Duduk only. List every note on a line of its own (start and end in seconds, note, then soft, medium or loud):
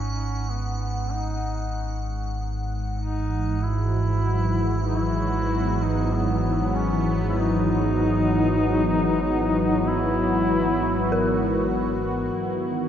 0.00 0.51 C#4 loud
0.50 1.14 B3 medium
1.13 2.06 D#4 medium
2.98 3.64 D#4 medium
3.63 4.87 E4 loud
4.87 5.83 E4 loud
5.82 6.15 D#4 medium
6.13 6.78 B3 medium
6.76 7.11 C#4 medium
7.29 7.40 E4 medium
7.38 9.89 D#4 loud
9.88 11.75 E4 loud